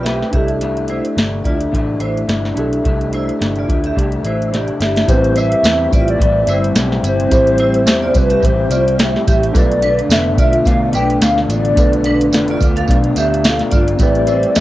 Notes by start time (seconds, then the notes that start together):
Already playing: B1 C4 E4 G4 B4
0.03 A3 C4 G4 E5, snare, closed hi-hat
0.08 B4
0.23 snare
0.31 C2 A3 D4 E4 G4 E5, kick, closed hi-hat
0.36 A4
0.48 closed hi-hat
0.61 C3 A3 D4 E4, closed hi-hat
0.77 closed hi-hat
0.88 A3 D4 E4 C5, closed hi-hat
1.05 closed hi-hat
1.16 G1 C3 A3 D4 E4, snare, closed hi-hat
1.44 D2 A3 D4 E4 F4 D5, kick, closed hi-hat
1.61 closed hi-hat
1.72 A1 C3 A3 D4 E4, kick, closed hi-hat
2.00 A1 A3 D4 E4 C5, closed hi-hat
2.17 closed hi-hat
2.27 G1 C3 A3 D4 E4, snare, closed hi-hat
2.45 snare
2.55 B1 D4 E4 G4, closed hi-hat
2.59 A3 A4
2.73 closed hi-hat
2.84 C2 C3 A3 D4 E4, kick, closed hi-hat
3.01 closed hi-hat
3.12 A3 D4 E4 C5, closed hi-hat
3.29 closed hi-hat
3.39 G1 C3 A3 D4 E4, snare, closed hi-hat
3.56 F4 D5, closed hi-hat
3.67 D2 A3 D4 E4, kick, closed hi-hat
3.84 G4 E5, closed hi-hat
3.96 C2 C3 A3 D4 E4, kick, closed hi-hat
4.12 closed hi-hat
4.24 A1 A3 D4 E4 C5, closed hi-hat
4.42 closed hi-hat
4.52 C3 A3 D4 E4 G4 D5, snare, closed hi-hat
4.68 closed hi-hat
4.80 G1 A3 D4 E4 G4 E5, snare, closed hi-hat
4.96 snare, closed hi-hat
5.06 A1 A2 G3 A3 B3 C4 E4 G4 C5, kick, closed hi-hat, tambourine
5.10 C4 E4 B4
5.24 closed hi-hat
5.36 G3 C4 E4 C5 E5, closed hi-hat, tambourine
5.52 closed hi-hat
5.63 E2 A2 G3 C4 E4, snare, closed hi-hat, tambourine
5.91 A1 G3 C4 E4 F4 D5, kick, closed hi-hat, tambourine
6.08 D5, closed hi-hat
6.19 A1 A2 G3 C4 E4, kick, closed hi-hat
6.47 G1 G3 C4 E4 C5, closed hi-hat, tambourine
6.64 closed hi-hat
6.75 B1 A2 G3 C4 E4, snare, closed hi-hat, tambourine
6.92 snare
7.03 G1 G3 C4 E4, closed hi-hat, tambourine
7.07 C5
7.20 closed hi-hat
7.29 A1 A2 G3 C4 E4 G4, kick, closed hi-hat, tambourine
7.34 C5
7.47 closed hi-hat
7.58 G3 C4 E4 C5, closed hi-hat
7.74 closed hi-hat
7.86 E2 A2 G3 C4 E4, snare, closed hi-hat, tambourine
8.03 F4 D5
8.14 C2 G3 C4 E4 B4, kick, closed hi-hat, tambourine
8.30 G4 E5, closed hi-hat
8.40 A1 A2 G3 C4 E4, kick, tambourine
8.45 C5, closed hi-hat
8.69 C2 G3 C4 E4 F4 D5, closed hi-hat, tambourine
8.88 closed hi-hat
8.98 A2 G3 C4 E4 G4 E5, snare, closed hi-hat, tambourine
9.16 snare
9.26 A1 G3 C4 E4 G4 E5, kick, closed hi-hat, tambourine
9.43 closed hi-hat
9.52 B1 B2 D3 A3 B3 D4 F4 A4, kick, tambourine
9.56 D4 F4 B4 D5, closed hi-hat
9.71 closed hi-hat
9.82 A3 D4 F4 B4, closed hi-hat
9.99 closed hi-hat
10.09 F1 B2 A3 D4 F4 E5, snare, closed hi-hat, tambourine
10.38 B1 A3 D4 F4 D5 E5, kick, closed hi-hat, tambourine
10.53 closed hi-hat
10.65 B2 A3 D4 F4 F5, kick, closed hi-hat, tambourine
10.93 B1 A3 D4 F4 B4 G5, closed hi-hat, tambourine
11.10 closed hi-hat
11.21 D2 B2 A3 D4 F4 F5, snare, closed hi-hat, tambourine
11.38 snare
11.49 A1 A3 D4 F4 D5, closed hi-hat, tambourine
11.65 closed hi-hat
11.75 B1 B2 A3 D4 F4 A4, kick, closed hi-hat, tambourine
11.80 B4
11.93 closed hi-hat
12.04 A3 D4 F4 B4, closed hi-hat
12.21 closed hi-hat
12.32 F1 B2 A3 D4 F4, snare, closed hi-hat, tambourine
12.48 F4 D5, closed hi-hat
12.60 D2 A3 D4 F4, kick, closed hi-hat, tambourine
12.76 A4 F5, closed hi-hat
12.87 B1 B2 A3 D4 F4, kick, closed hi-hat, tambourine
13.04 closed hi-hat
13.16 D2 A3 D4 F4 G4 E5, closed hi-hat, tambourine
13.34 closed hi-hat
13.44 B2 A3 D4 F4 A4 F5, snare, closed hi-hat, tambourine
13.59 snare, closed hi-hat
13.71 G1 D4 F4 D5, kick, closed hi-hat, tambourine
13.75 A3
13.88 closed hi-hat
13.97 A1 A2 G3 C4 E4 G4 D5, kick, closed hi-hat, tambourine
14.03 B4
14.15 closed hi-hat
14.27 G3 C4 E4 C5, closed hi-hat, tambourine
14.43 closed hi-hat
14.55 E2 A2 G3 C4 E4 E5, snare, closed hi-hat, tambourine